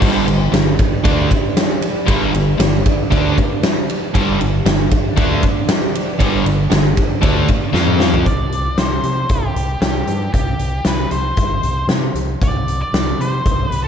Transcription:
0.00 G1 G2 D3 G3 D4 G4 B4 D5, kick, crash
0.26 G1 G2 D3, ride
0.51 G1 G2 D3, snare, ride
0.79 kick, ride
1.04 D2 D3 A3 D4, kick, ride
1.31 kick, ride
1.57 snare, ride
1.82 ride
2.06 G1 G2 D3 G3, kick, ride
2.32 G1 G2 D3, ride
2.57 G1 G2 D3, snare, ride
2.86 kick, ride
3.11 D2 D3 A3 D4, kick, ride
3.38 kick, ride
3.63 snare, ride
3.90 ride
4.14 G1 G2 D3 G3 D4 G4 B4 D5, kick, ride
4.39 G1 G2 D3, ride
4.65 G1 G2 D3, snare, ride
4.91 kick, ride
5.16 D2 D3 A3 D4, kick, ride
5.43 kick, ride
5.69 snare, ride
5.95 ride
6.19 G1 G2 D3 G3, kick, ride
6.45 G1 G2 D3, ride
6.71 G1 G2 D3, snare, ride
6.97 kick, ride
7.21 D2 D3 A3 D4, kick, ride
7.48 kick, ride
7.73 F2 F3 C4 F4 C5 F5, snare
7.87 mid tom
8.00 snare
8.14 floor tom
8.26 C2 D5, kick, closed hi-hat
8.52 closed hi-hat
8.77 C2 C5, snare, closed hi-hat
9.03 C3, closed hi-hat
9.29 C2 G4, kick, closed hi-hat
9.55 C2, closed hi-hat
9.81 C2 G4, snare, closed hi-hat
10.07 G2, closed hi-hat
10.34 C2 G4, kick, closed hi-hat
10.59 C2, closed hi-hat
10.85 C2 B4, snare, closed hi-hat
11.11 C2 C5, closed hi-hat
11.37 G1, kick, closed hi-hat
11.63 C2, closed hi-hat
11.87 C3, snare, closed hi-hat
12.14 C2, closed hi-hat
12.42 C2 D5, kick, closed hi-hat
12.68 closed hi-hat
12.82 D5
12.93 C2, snare, closed hi-hat
13.19 C3 C5, closed hi-hat
13.45 C2, kick, closed hi-hat
13.67 C2 B4
13.72 closed hi-hat
13.84 A4

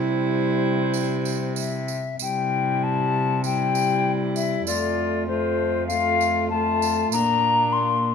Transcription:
Already playing: C3 G3 E4 C5
0.94 tambourine
1.25 tambourine
1.56 E5, tambourine
1.88 tambourine
2.19 C3 G3 E4 G5, tambourine
2.84 A5
3.44 G3 E4 G5, tambourine
3.75 tambourine
4.36 E5, tambourine
4.67 F2 A3 F4 D5, tambourine
5.27 A3 F4 C5
5.87 F5, tambourine
5.91 A3 F4
6.21 tambourine
6.50 A3 F4 A5
6.82 tambourine
7.12 A#2 A#3 D4 A#5, tambourine
7.73 C6

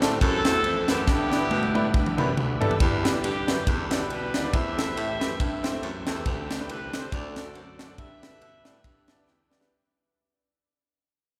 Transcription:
Already playing: D3 A3 C4 G4
0.02 A2 A3 C4 D4 G4 A4, snare, ride bell
0.21 F#2 E3 A3 C4 E4 F#4 A4, kick, ride bell
0.45 E2 A3 C4 E4 F#4 A4, snare, ride bell
0.64 F2, ride bell
0.88 F#2 A3 B3 C4 E4 F#4 G4 B4, snare, ride bell
1.07 G2 D3 G3 B3 E4, kick, snare
1.31 B3 D4 E4 G4 B4, snare
1.51 B2, high tom
1.63 high tom
1.74 A2 B3 D4 E4 G4 B4, high tom
1.94 G2, kick
2.06 mid tom
2.17 F#2 B3 D4 E4 G4 B4, mid tom
2.37 D2, mid tom
2.60 B3 D4 E4 G4 A4, floor tom
2.71 floor tom
2.80 E2 D3 E3 G3 B3 D4 E4 G4, kick, ride bell
3.03 B3 D4 E4 G4 B4, snare, ride bell
3.13 B3 D4 E4 G4 B4
3.24 G2 B3 D4 G4, ride bell
3.47 F#2 B3 D4 E4 G4 B4, snare, ride bell
3.67 E2 D4 A4, kick, ride bell
3.90 B3 D4 E4 G4 D5, snare, ride bell
4.00 B3 D4 E4 G4 B4
4.10 B2 D4 G4 B4, ride bell
4.34 D#2 B3 D4 E4 G4 D5, snare, ride bell
4.44 B3 D4 E4 G4 D5
4.53 E2 E3 A3 C4 G4 C5 E5, kick, ride bell
4.77 A3 C4 E4 G4 A4, snare, ride bell
4.87 A3 C4 E4 G4 B4
4.97 A2, ride bell
5.19 F#2 A3 C4 E4 G4 B4, snare, ride bell
5.40 G2, kick, ride bell
5.63 A3 C4 E4 G4 C5, snare, ride bell
5.72 A3 C4 E4 G4 C5
5.83 F#2, ride bell
6.06 E2 A3 C4 E4 G4 A4, snare, ride bell
6.16 A3 C4 E4 G4 B4
6.26 D2 D3 C4 G4, kick, ride bell
6.50 A3 C4 D4 G4 A4, snare, ride bell
6.60 A3 C4 D4 G4 B4
6.69 C2 B4, ride bell
6.93 A3 C4 D4 G4 C5, snare, ride bell
6.98 C5
7.12 D2 D3 F#4 A4 D5, kick, ride bell
7.36 A3 C4 D4 F#4 A4, snare, ride bell
7.45 A3 C4 D4 F#4 A4
7.55 F#2, ride bell
7.78 F#2 A3 C4 D4 F#4 A4 D5, snare, ride bell
7.88 A3 C4 D4 F#4 A4
7.98 G2 G3 B3 E4 B4 E5, kick, ride bell
8.22 B3 D4 E4 G4 B4, snare, ride bell
8.31 B3 D4 E4 G4 A4
8.41 B2, ride bell
8.64 A2 B3 D4 E4 G4 D5, snare, ride bell
8.84 G2, kick, ride bell
9.08 B3 D4 E4 G4 D5 A5, snare, ride bell
9.17 B3 D4 E4 G4 D5
9.27 E2 G5, snare
9.50 B3 D4 E4 G4 D5, snare
9.60 B3 D4 E4 G4 B4, snare

